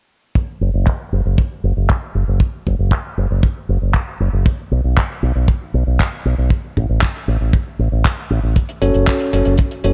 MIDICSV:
0, 0, Header, 1, 4, 480
1, 0, Start_track
1, 0, Key_signature, 3, "minor"
1, 0, Tempo, 512821
1, 332, Time_signature, 4, 2, 24, 8
1, 9298, End_track
2, 0, Start_track
2, 0, Title_t, "Tine electric piano"
2, 0, Program_c, 0, 4
2, 8252, Note_on_c, 0, 66, 80
2, 8253, Note_on_c, 0, 61, 85
2, 8253, Note_on_c, 0, 69, 80
2, 8253, Note_on_c, 0, 73, 98
2, 8704, Note_off_c, 0, 61, 0
2, 8704, Note_off_c, 0, 66, 0
2, 8704, Note_off_c, 0, 69, 0
2, 8704, Note_off_c, 0, 73, 0
2, 8734, Note_on_c, 0, 61, 73
2, 8734, Note_on_c, 0, 66, 66
2, 8734, Note_on_c, 0, 69, 69
2, 8734, Note_on_c, 0, 73, 82
2, 8925, Note_off_c, 0, 61, 0
2, 8925, Note_off_c, 0, 66, 0
2, 8925, Note_off_c, 0, 69, 0
2, 8925, Note_off_c, 0, 73, 0
2, 9213, Note_on_c, 0, 66, 71
2, 9213, Note_on_c, 0, 69, 70
2, 9214, Note_on_c, 0, 61, 80
2, 9214, Note_on_c, 0, 73, 84
2, 9298, Note_off_c, 0, 61, 0
2, 9298, Note_off_c, 0, 66, 0
2, 9298, Note_off_c, 0, 69, 0
2, 9298, Note_off_c, 0, 73, 0
2, 9298, End_track
3, 0, Start_track
3, 0, Title_t, "Fingered electric bass"
3, 0, Program_c, 1, 33
3, 570, Note_on_c, 1, 30, 84
3, 671, Note_off_c, 1, 30, 0
3, 690, Note_on_c, 1, 30, 70
3, 791, Note_off_c, 1, 30, 0
3, 1052, Note_on_c, 1, 30, 78
3, 1152, Note_off_c, 1, 30, 0
3, 1172, Note_on_c, 1, 30, 71
3, 1272, Note_off_c, 1, 30, 0
3, 1532, Note_on_c, 1, 30, 79
3, 1632, Note_off_c, 1, 30, 0
3, 1652, Note_on_c, 1, 30, 71
3, 1752, Note_off_c, 1, 30, 0
3, 2010, Note_on_c, 1, 30, 76
3, 2111, Note_off_c, 1, 30, 0
3, 2131, Note_on_c, 1, 30, 71
3, 2232, Note_off_c, 1, 30, 0
3, 2496, Note_on_c, 1, 30, 83
3, 2594, Note_off_c, 1, 30, 0
3, 2610, Note_on_c, 1, 30, 71
3, 2711, Note_off_c, 1, 30, 0
3, 2971, Note_on_c, 1, 30, 81
3, 3072, Note_off_c, 1, 30, 0
3, 3092, Note_on_c, 1, 30, 75
3, 3192, Note_off_c, 1, 30, 0
3, 3452, Note_on_c, 1, 30, 84
3, 3552, Note_off_c, 1, 30, 0
3, 3571, Note_on_c, 1, 30, 72
3, 3672, Note_off_c, 1, 30, 0
3, 3932, Note_on_c, 1, 30, 84
3, 4032, Note_off_c, 1, 30, 0
3, 4051, Note_on_c, 1, 30, 71
3, 4152, Note_off_c, 1, 30, 0
3, 4412, Note_on_c, 1, 35, 80
3, 4512, Note_off_c, 1, 35, 0
3, 4531, Note_on_c, 1, 35, 70
3, 4632, Note_off_c, 1, 35, 0
3, 4891, Note_on_c, 1, 35, 88
3, 4992, Note_off_c, 1, 35, 0
3, 5011, Note_on_c, 1, 35, 74
3, 5112, Note_off_c, 1, 35, 0
3, 5372, Note_on_c, 1, 35, 84
3, 5472, Note_off_c, 1, 35, 0
3, 5492, Note_on_c, 1, 35, 73
3, 5592, Note_off_c, 1, 35, 0
3, 5853, Note_on_c, 1, 35, 78
3, 5952, Note_off_c, 1, 35, 0
3, 5972, Note_on_c, 1, 35, 74
3, 6072, Note_off_c, 1, 35, 0
3, 6336, Note_on_c, 1, 33, 79
3, 6434, Note_off_c, 1, 33, 0
3, 6452, Note_on_c, 1, 33, 72
3, 6552, Note_off_c, 1, 33, 0
3, 6812, Note_on_c, 1, 33, 80
3, 6912, Note_off_c, 1, 33, 0
3, 6932, Note_on_c, 1, 33, 71
3, 7032, Note_off_c, 1, 33, 0
3, 7292, Note_on_c, 1, 33, 81
3, 7392, Note_off_c, 1, 33, 0
3, 7412, Note_on_c, 1, 33, 74
3, 7512, Note_off_c, 1, 33, 0
3, 7772, Note_on_c, 1, 33, 79
3, 7872, Note_off_c, 1, 33, 0
3, 7893, Note_on_c, 1, 33, 72
3, 7993, Note_off_c, 1, 33, 0
3, 8253, Note_on_c, 1, 30, 78
3, 8352, Note_off_c, 1, 30, 0
3, 8373, Note_on_c, 1, 30, 69
3, 8473, Note_off_c, 1, 30, 0
3, 8733, Note_on_c, 1, 30, 82
3, 8833, Note_off_c, 1, 30, 0
3, 8852, Note_on_c, 1, 30, 76
3, 8952, Note_off_c, 1, 30, 0
3, 9212, Note_on_c, 1, 30, 84
3, 9298, Note_off_c, 1, 30, 0
3, 9298, End_track
4, 0, Start_track
4, 0, Title_t, "Drums"
4, 331, Note_on_c, 9, 36, 120
4, 425, Note_off_c, 9, 36, 0
4, 808, Note_on_c, 9, 39, 104
4, 811, Note_on_c, 9, 36, 103
4, 902, Note_off_c, 9, 39, 0
4, 905, Note_off_c, 9, 36, 0
4, 1293, Note_on_c, 9, 36, 104
4, 1387, Note_off_c, 9, 36, 0
4, 1775, Note_on_c, 9, 39, 100
4, 1776, Note_on_c, 9, 36, 101
4, 1869, Note_off_c, 9, 36, 0
4, 1869, Note_off_c, 9, 39, 0
4, 2247, Note_on_c, 9, 36, 104
4, 2341, Note_off_c, 9, 36, 0
4, 2496, Note_on_c, 9, 36, 53
4, 2590, Note_off_c, 9, 36, 0
4, 2725, Note_on_c, 9, 36, 106
4, 2740, Note_on_c, 9, 39, 121
4, 2819, Note_off_c, 9, 36, 0
4, 2833, Note_off_c, 9, 39, 0
4, 3212, Note_on_c, 9, 36, 101
4, 3305, Note_off_c, 9, 36, 0
4, 3689, Note_on_c, 9, 36, 100
4, 3690, Note_on_c, 9, 39, 125
4, 3782, Note_off_c, 9, 36, 0
4, 3784, Note_off_c, 9, 39, 0
4, 4173, Note_on_c, 9, 36, 127
4, 4266, Note_off_c, 9, 36, 0
4, 4655, Note_on_c, 9, 36, 104
4, 4655, Note_on_c, 9, 39, 107
4, 4748, Note_off_c, 9, 39, 0
4, 4749, Note_off_c, 9, 36, 0
4, 5131, Note_on_c, 9, 36, 116
4, 5224, Note_off_c, 9, 36, 0
4, 5614, Note_on_c, 9, 36, 102
4, 5616, Note_on_c, 9, 39, 114
4, 5707, Note_off_c, 9, 36, 0
4, 5710, Note_off_c, 9, 39, 0
4, 6088, Note_on_c, 9, 36, 117
4, 6181, Note_off_c, 9, 36, 0
4, 6337, Note_on_c, 9, 36, 52
4, 6430, Note_off_c, 9, 36, 0
4, 6563, Note_on_c, 9, 39, 116
4, 6577, Note_on_c, 9, 36, 100
4, 6657, Note_off_c, 9, 39, 0
4, 6670, Note_off_c, 9, 36, 0
4, 7051, Note_on_c, 9, 36, 114
4, 7145, Note_off_c, 9, 36, 0
4, 7534, Note_on_c, 9, 36, 109
4, 7536, Note_on_c, 9, 39, 118
4, 7628, Note_off_c, 9, 36, 0
4, 7630, Note_off_c, 9, 39, 0
4, 8012, Note_on_c, 9, 42, 59
4, 8014, Note_on_c, 9, 36, 107
4, 8105, Note_off_c, 9, 42, 0
4, 8107, Note_off_c, 9, 36, 0
4, 8133, Note_on_c, 9, 42, 52
4, 8226, Note_off_c, 9, 42, 0
4, 8253, Note_on_c, 9, 42, 75
4, 8347, Note_off_c, 9, 42, 0
4, 8369, Note_on_c, 9, 42, 44
4, 8463, Note_off_c, 9, 42, 0
4, 8488, Note_on_c, 9, 42, 71
4, 8492, Note_on_c, 9, 39, 113
4, 8495, Note_on_c, 9, 36, 103
4, 8582, Note_off_c, 9, 42, 0
4, 8585, Note_off_c, 9, 39, 0
4, 8589, Note_off_c, 9, 36, 0
4, 8606, Note_on_c, 9, 42, 46
4, 8700, Note_off_c, 9, 42, 0
4, 8734, Note_on_c, 9, 42, 86
4, 8828, Note_off_c, 9, 42, 0
4, 8848, Note_on_c, 9, 42, 46
4, 8942, Note_off_c, 9, 42, 0
4, 8963, Note_on_c, 9, 42, 64
4, 8974, Note_on_c, 9, 36, 101
4, 9056, Note_off_c, 9, 42, 0
4, 9068, Note_off_c, 9, 36, 0
4, 9091, Note_on_c, 9, 42, 44
4, 9184, Note_off_c, 9, 42, 0
4, 9210, Note_on_c, 9, 42, 79
4, 9298, Note_off_c, 9, 42, 0
4, 9298, End_track
0, 0, End_of_file